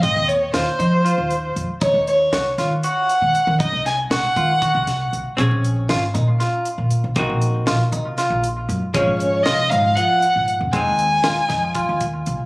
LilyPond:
<<
  \new Staff \with { instrumentName = "Violin" } { \time 7/8 \key ees \dorian \tempo 4 = 118 ees''8 des''8 c''2 r8 | des''8 des''4 r8 ges''4. | ees''8 aes''8 ges''2 r8 | r2. r8 |
r2. r8 | des''8 des''8 ees''8 f''8 ges''4 r8 | aes''2~ aes''8 r4 | }
  \new Staff \with { instrumentName = "Clean electric guitar" } { \time 7/8 \key ees \dorian c'4 f'8 ees'8 f'4 r8 | ees'4 ges'8 f'8 ges'4 r8 | ees'4 ges'8 f'8 ges'4 r8 | des'4 f'8 ees'8 f'4 r8 |
c'4 f'8 ees'8 f'4 r8 | des'4 f'8 ees'8 f4 r8 | c'4 f'8 ees'8 f'4 r8 | }
  \new Staff \with { instrumentName = "Hollow-body jazz guitar" } { \time 7/8 \key ees \dorian r2. r8 | r2. r8 | r2. r8 | <c' des' aes'>2.~ <c' des' aes'>8 |
<bes ees' ges'>2.~ <bes ees' ges'>8 | <f aes des'>2.~ <f aes des'>8 | <aes c' ees'>2.~ <aes c' ees'>8 | }
  \new Staff \with { instrumentName = "Upright bass" } { \clef bass \time 7/8 \key ees \dorian aes,16 ees,8. ees,16 r16 f8. ees,8. f,16 r16 | ees,16 ees,8. c,8 ees8 r8. ees16 r16 ees16 | ges,16 c,8. c,16 r16 ees8. c,8. c,16 r16 | bes,,16 bes,,8. aes,,8 bes,8 r8. bes,8 bes,,16 |
c,16 bes,,8. bes,,16 r16 c8. bes,,8. ges,16 r16 | aes,,16 aes,,8. c,8 aes,8 r8. aes,8 ges,,16 | f,,16 ees,8. ees,16 r16 f,8. ees,8. c,16 r16 | }
  \new DrumStaff \with { instrumentName = "Drums" } \drummode { \time 7/8 <hh bd>8 hh8 <hh sn>8 hh8 hh8 hh8 hh8 | <hh bd>8 hh8 <hh sn>8 <hh sn>8 hh8 hh8 hh8 | <hh bd>8 <hh sn>8 <hh sn>8 <hh bd>8 <hh bd>8 <hh bd sn>8 hh8 | <hh bd>8 hh8 <hh sn>8 hh8 <hh sn>8 hh8 hh8 |
<hh bd>8 hh8 <hh sn>8 hh8 <hh sn>8 hh8 hh8 | <hh bd>8 hh8 <hh sn>8 hh8 hh8 hh8 hh8 | <hh bd>8 hh8 <hh sn>8 <hh bd sn>8 <hh bd>8 <hh bd>8 hh8 | }
>>